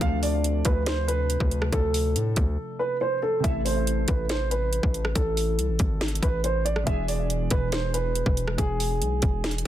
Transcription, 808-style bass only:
0.01 0.63 D2 loud
0.65 1.37 D2 loud
1.40 1.71 D2 loud
1.73 2.17 D2 loud
2.15 2.36 A2 loud
2.37 2.57 D2 loud
3.44 4.06 A1 loud
4.08 4.80 A1 loud
4.83 5.14 A1 loud
5.16 5.60 A1 loud
5.58 5.71 C2 loud
5.69 5.79 A1 loud
5.80 6.21 G#1 loud
6.23 6.84 A1 loud
6.87 7.49 E1 loud
7.51 8.23 E1 loud
8.26 8.57 E1 loud
8.58 9.03 E1 loud
9.01 9.21 B1 loud
9.23 9.64 E1 loud

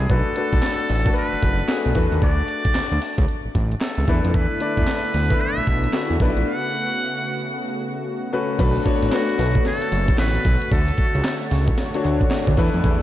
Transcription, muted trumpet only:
0.00 0.13 G#4 medium
0.11 1.17 A4 loud
1.17 1.92 B4 loud
2.23 3.25 D5 loud
3.83 4.36 A4 medium
4.35 5.43 B4 medium
5.41 6.21 E5 loud
6.48 7.49 F#5 loud
9.13 9.62 F#4 medium
9.66 10.15 A4 loud
10.19 10.68 B4 loud
10.72 11.48 A4 loud

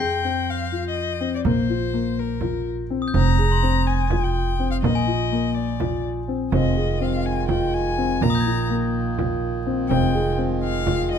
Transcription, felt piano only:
0.00 0.20 G#4 medium
0.24 0.64 C4 medium
0.72 1.12 F4 medium
1.21 1.41 C4 medium
1.45 1.65 A#3 medium
1.70 1.89 F4 medium
1.93 2.33 A#3 medium
2.42 2.82 F4 medium
2.90 3.10 C4 medium
3.14 3.34 C4 medium
3.39 3.58 G#4 medium
3.63 4.02 C4 medium
4.11 4.51 F4 medium
4.59 4.79 C4 medium
4.83 5.03 A#3 medium
5.07 5.27 F4 medium
5.32 5.71 A#3 medium
5.80 6.20 F4 medium
6.28 6.48 C4 medium
6.53 6.72 C4 medium
6.77 6.96 G#4 medium
7.00 7.40 C4 medium
7.49 7.89 F4 medium
7.98 8.17 C4 medium
8.22 8.42 A#3 medium
8.46 8.66 F4 medium
8.70 9.09 A#3 medium
9.18 9.57 F4 medium
9.66 9.86 C4 medium
9.90 10.10 C4 medium
10.14 10.34 G#4 medium
10.38 10.78 C4 medium
10.86 11.19 F4 medium

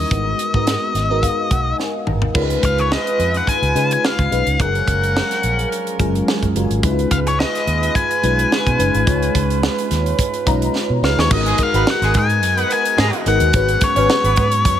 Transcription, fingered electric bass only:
0.11 0.32 G#1 medium
0.54 0.75 G#2 medium
0.94 1.27 G#1 medium
1.51 1.72 B1 medium
2.07 2.28 G#1 medium
2.35 2.56 C#2 medium
2.63 2.95 C#2 medium
3.19 3.40 F2 medium
3.62 3.72 C#2 medium
3.75 3.96 C#3 medium
4.19 4.28 C#2 medium
4.32 4.43 B1 medium
4.46 4.56 C#2 medium
4.60 4.80 F#1 medium
4.88 5.20 F#1 loud
5.43 5.64 A#1 medium
5.99 6.20 F#1 medium
6.42 6.52 F#2 medium
6.55 6.66 F#1 medium
6.70 6.80 G#1 medium
6.83 7.04 C#2 loud
7.11 7.43 C#2 medium
7.67 7.88 D#2 medium
8.23 8.44 B1 medium
8.66 8.76 B2 medium
8.79 8.90 F#1 medium
8.95 9.04 G#1 medium
9.07 9.28 C#2 loud
9.35 9.67 C#2 medium
9.91 10.12 D#2 medium
10.46 10.67 B1 loud
10.90 10.99 B2 medium
11.02 11.14 C#2 medium
11.17 11.27 D#2 medium
11.31 11.52 G#1 loud
11.74 11.83 G#1 medium
12.02 12.11 G#1 medium
12.15 12.42 G#2 loud
12.42 12.63 F#2 loud
12.98 13.10 G#2 loud
13.26 13.37 G#1 medium
13.40 13.50 D#2 medium
13.54 13.75 G#1 loud
13.96 14.06 G#1 medium
14.24 14.34 G#1 loud
14.37 14.65 G#2 loud
14.65 14.80 F#2 loud

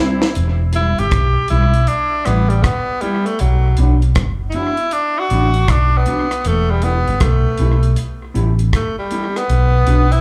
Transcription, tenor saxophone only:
0.75 1.01 E4 loud
0.99 1.49 G4 loud
1.50 1.90 E4 loud
1.88 2.27 D4 loud
2.26 2.51 B3 medium
2.49 2.64 G3 medium
2.63 3.03 B3 medium
3.01 3.27 G3 medium
3.26 3.41 A3 medium
3.40 3.78 F#3 medium
4.49 4.57 D#4 medium
4.55 4.94 E4 loud
4.93 5.20 D4 loud
5.19 5.73 F#4 loud
5.71 5.99 D4 loud
5.97 6.48 B3 loud
6.47 6.72 A3 medium
6.71 6.85 G3 medium
6.84 7.24 B3 loud
7.22 7.98 A3 medium
8.75 8.97 A3 medium
8.99 9.38 G3 medium
9.37 10.14 B3 loud
10.12 10.21 E4 loud

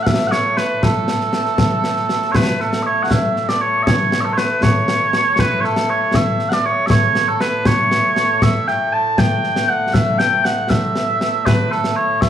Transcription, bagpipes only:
0.00 12.29 A2 medium
0.00 12.29 A3 medium
0.00 0.06 F#5 loud
0.06 0.27 E5 loud
0.27 0.31 F#5 loud
0.31 0.57 C#5 loud
0.57 0.83 B4 medium
0.83 2.31 A4 medium
2.31 2.60 B4 medium
2.31 2.35 C#5 medium
2.60 2.83 A4 medium
2.83 3.03 C#5 medium
2.83 2.86 E5 medium
3.03 3.11 F#5 medium
3.11 3.49 E5 medium
3.49 3.61 D5 medium
3.61 3.83 C#5 medium
3.83 4.21 C#5 loud
3.83 3.87 E5 loud
4.21 4.33 A4 medium
4.21 4.25 E5 medium
4.33 4.37 C#5 medium
4.37 4.62 B4 medium
4.62 5.40 C#5 loud
5.40 5.60 B4 loud
5.60 5.65 C#5 medium
5.65 5.90 A4 medium
5.90 6.15 C#5 medium
6.15 6.49 E5 medium
6.49 6.66 D5 medium
6.49 6.53 F#5 medium
6.66 6.86 C#5 medium
6.86 6.90 E5 loud
6.90 7.28 C#5 loud
7.28 7.41 A4 medium
7.41 7.66 B4 medium
7.66 8.43 C#5 loud
8.43 8.68 E5 loud
8.68 8.93 G5 loud
8.93 9.18 A5 loud
9.18 9.69 G5 loud
9.69 9.94 F#5 loud
9.94 10.18 E5 loud
10.18 10.44 G5 loud
10.44 10.70 F#5 loud
10.70 11.46 E5 loud
11.46 11.71 B4 medium
11.71 11.96 A4 medium
11.96 12.21 C#5 medium
12.21 12.29 E5 loud

